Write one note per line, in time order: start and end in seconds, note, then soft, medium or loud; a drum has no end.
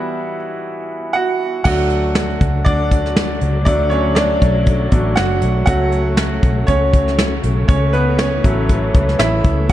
0.00 0.36 E3 soft
0.00 0.36 G3 soft
0.00 0.36 B3 medium
0.00 1.67 E4 medium
0.00 1.16 F#4 medium
0.00 1.67 E5 medium
0.00 1.13 F#5 medium
1.13 1.62 F#4 medium
1.13 1.63 F#5 medium
1.64 2.37 D2 medium
1.64 5.63 D3 medium
1.64 3.62 F#3 soft
1.64 7.64 F#3 medium
1.64 9.72 A3 medium
1.64 3.63 A3 soft
1.64 2.66 D4 medium
1.64 2.62 F#4 medium
1.64 2.68 F#5 medium
1.64 kick medium
1.64 crash medium
1.90 closed hi-hat soft
2.15 snare loud
2.15 closed hi-hat medium
2.41 2.64 C#2 medium
2.41 kick medium
2.41 closed hi-hat medium
2.65 3.38 D2 medium
2.65 3.63 D4 medium
2.65 3.64 D5 medium
2.65 kick medium
2.65 closed hi-hat medium
2.91 kick medium
2.91 closed hi-hat medium
3.06 snare soft
3.16 snare loud
3.16 closed hi-hat medium
3.41 3.65 C#2 medium
3.41 closed hi-hat medium
3.65 4.38 D2 medium
3.65 4.01 F#3 soft
3.65 4.01 A3 soft
3.65 3.90 D4 medium
3.65 3.92 D5 medium
3.65 kick loud
3.65 closed hi-hat medium
3.90 4.15 C#4 medium
3.90 4.17 C#5 medium
3.90 closed hi-hat soft
4.15 4.90 D4 medium
4.15 5.12 D5 medium
4.15 snare loud
4.15 closed hi-hat medium
4.42 4.89 B1 medium
4.42 kick medium
4.42 closed hi-hat medium
4.66 kick medium
4.66 closed hi-hat medium
4.91 5.16 A1 medium
4.91 5.14 F#3 soft
4.91 5.14 A3 soft
4.91 5.15 D4 soft
4.91 kick medium
4.91 closed hi-hat medium
5.16 5.41 F#1 medium
5.16 5.64 F#4 medium
5.16 5.64 F#5 medium
5.16 snare loud
5.16 closed hi-hat medium
5.42 5.66 B1 medium
5.42 closed hi-hat medium
5.66 6.39 C#2 medium
5.66 9.65 C#3 medium
5.66 6.01 F#3 medium
5.66 6.02 A3 medium
5.66 6.02 C#4 medium
5.66 6.64 F#4 medium
5.66 6.70 F#5 medium
5.66 kick medium
5.66 closed hi-hat medium
5.92 closed hi-hat soft
6.17 snare loud
6.17 closed hi-hat medium
6.43 6.66 B1 medium
6.43 kick medium
6.43 closed hi-hat medium
6.67 7.40 C#2 medium
6.67 7.65 C#4 medium
6.67 7.66 C#5 medium
6.67 kick medium
6.67 closed hi-hat medium
6.93 kick medium
6.93 closed hi-hat medium
7.08 snare soft
7.19 snare medium
7.19 closed hi-hat medium
7.43 7.67 B1 medium
7.43 closed hi-hat medium
7.68 8.40 C#2 loud
7.68 9.68 E3 medium
7.68 7.92 C#4 medium
7.68 7.94 C#5 medium
7.68 kick medium
7.68 closed hi-hat medium
7.93 8.17 B3 medium
7.93 8.19 B4 medium
7.93 closed hi-hat soft
8.18 8.44 C#4 medium
8.18 9.22 C#5 medium
8.18 snare loud
8.18 closed hi-hat medium
8.44 8.91 A1 medium
8.44 8.79 F#3 medium
8.44 8.79 A3 soft
8.44 8.79 C#4 medium
8.44 kick medium
8.44 closed hi-hat medium
8.69 kick medium
8.69 closed hi-hat medium
8.95 9.18 C#2 medium
8.95 kick medium
8.95 closed hi-hat medium
9.09 snare soft
9.19 9.43 A1 medium
9.19 9.67 E4 medium
9.19 9.71 E5 medium
9.19 snare medium
9.19 closed hi-hat medium
9.44 9.68 C#2 medium
9.44 kick medium
9.44 closed hi-hat medium
9.69 9.72 F#3 medium
9.69 closed hi-hat medium